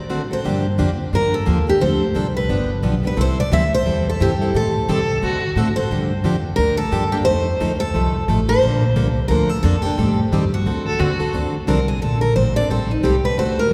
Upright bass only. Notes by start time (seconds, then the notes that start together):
0.46 G2
0.80 F2
1.13 G2
1.47 D#2
1.82 D2
2.15 C2
2.49 G1
2.83 B1
3.17 C2
3.51 D2
3.86 E2
4.20 G2
4.54 A2
4.89 C3
5.23 D3
5.56 A2
5.78 muted upright bass stroke
5.91 G2
6.24 F2
6.58 D2
6.92 G2
7.26 F2
7.61 D2
7.94 C2
8.28 A1
8.62 A#1
8.96 C2
9.30 D2
9.63 F2
9.84 muted upright bass stroke
9.98 A2
10.32 G2
10.66 D2
10.99 D#2
11.20 muted upright bass stroke
11.33 D2
11.68 C2
12.03 A#1
12.36 A1
12.69 A1
13.03 C2
13.38 D2